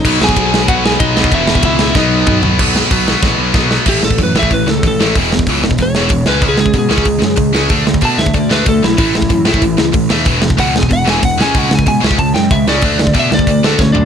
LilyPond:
<<
  \new Staff \with { instrumentName = "Lead electric guitar" } { \time 4/4 \key e \major \tempo 4 = 188 <dis' dis''>8 <gis' gis''>4. <fis' fis''>8 <gis' gis''>8 <dis' dis''>4 | <e' e''>4 <e' e''>4 <dis' dis''>4. r8 | r1 | g'8 a'8 b'8 e''8 b'8 a'8 a'4 |
r2 cis''4. b'8 | gis'8 gis'8 gis'2. | r4 a''8 e''8 d''8 b'8 a'8 e'8 | e'2. r4 |
r4 fis''8 gis''8 fis''8 gis''8 fis''8 gis''8 | fis''8 gis''8 gis''8 r8 a''8 g''8 e''8 d''8~ | d''4 e''8 d''4 a'8 <cis' cis''>8 <d' d''>8 | }
  \new Staff \with { instrumentName = "Overdriven electric guitar" } { \clef bass \time 4/4 \key e \major <b, fis b>2.~ <b, fis b>8 <b, fis b>8 | <e, b, e>2 <b, fis b>2 | <b, fis b>4 <b, fis b>8 <b, fis b>8 <b, fis b>4 <b, fis b>8 <b, fis b>8 | <a, e a>8 <a, e>8 <a, e>8 <a, e a>8 <a, e>8 <a, e>8 <a, e>8 <a, e a>8 |
<e, b, e>8 <e, b,>8 <e, b, e>8 <e, b,>8 <e, b,>8 <e, b, e>8 <e, b,>8 <cis gis cis'>8 | <cis gis cis'>8 <cis gis>8 <cis gis>8 <cis gis cis'>8 <cis gis>8 <cis gis>8 <cis gis>8 <cis gis cis'>8 | <d a d'>8 <d a>8 <d a d'>8 <d a>8 <d a>8 <d a d'>8 <d a>8 <d a>8 | <a, e a>8 <a, e>8 <a, e>8 <a, e a>8 <a, e>8 <a, e>8 <a, e>8 <a, e a>8 |
<e, b, e>8 <e, b,>8 <e, b, e>8 <e, b,>8 <e, b,>8 <e, b, e>8 <e, b,>8 <cis gis cis'>8 | <cis gis cis'>8 <cis gis>8 <cis gis>8 <cis gis cis'>8 <cis gis>8 <cis gis>8 <cis gis>8 <cis gis cis'>8 | <d a d'>8 <d a>8 <d a d'>8 <d a>8 <d a>8 <d a d'>8 <d a>8 <d a>8 | }
  \new Staff \with { instrumentName = "Picked electric bass" } { \clef bass \time 4/4 \key e \major b,,8 b,,8 b,,4 b,,4 b,,8 b,,8 | e,,8 e,,8 cis,4 b,,4 b,,8 b,,8 | b,,4 b,,4 a,,8 b,,8 b,,4 | a,,8 a,,8 fis,8 a,,8 a,,8 cis,8 a,,8 a,,8 |
e,,4 cis,8 e,,8 e,,4 e,,8 cis,8 | cis,8 cis,8 b,8 cis,8 cis,8 fis,8 cis,8 cis,8 | d,4 b,8 d,8 d,4 d,8 b,,8 | a,,8 a,,8 fis,8 a,,8 a,,8 cis,8 a,,8 dis,8 |
e,,4 cis,8 e,,8 e,,4 e,,8 cis,8 | cis,8 cis,8 b,8 cis,8 cis,8 fis,8 cis,8 cis,8 | d,4 b,8 d,8 d,4 d,8 b,,8 | }
  \new DrumStaff \with { instrumentName = "Drums" } \drummode { \time 4/4 <cymc bd>8 sn16 bd16 <bd cymr>8 sn8 <bd cymr>8 sn8 <bd cymr>8 sn16 bd16 | <bd cymr>8 sn16 bd16 <bd cymr>8 sn8 <bd sn>4 <bd toml>8 tomfh8 | <cymc bd>8 sn8 <hho bd>8 sn8 <bd sn>4 <bd sn>8 sn8 | <cymc bd>8 sn16 bd16 <hho bd>8 sn16 bd16 <hho bd>8 sn8 <hho bd>8 sn8 |
<hho bd>8 sn16 bd16 <hho bd>8 sn16 bd16 <hho bd>8 sn8 <hho bd>8 sn8 | <hho bd>8 sn16 bd16 <hho bd>8 sn16 bd16 <hho bd>8 sn8 <hho bd>8 sn8 | <hho bd>8 sn16 bd16 <hho bd>8 sn16 bd16 <hho bd>8 sn8 <hho bd>8 sn8 | <hho bd>8 sn16 bd16 <hho bd>8 sn16 bd16 <hho bd>8 sn8 <hho bd>8 sn8 |
<hho bd>8 sn16 bd16 <hho bd>8 sn16 bd16 <hho bd>8 sn8 <hho bd>8 sn8 | <hho bd>8 sn16 bd16 <hho bd>8 sn16 bd16 <hho bd>8 sn8 <hho bd>8 sn8 | <hho bd>8 sn16 bd16 <hho bd>8 sn16 bd16 <hho bd>8 sn8 <bd sn>8 tomfh8 | }
>>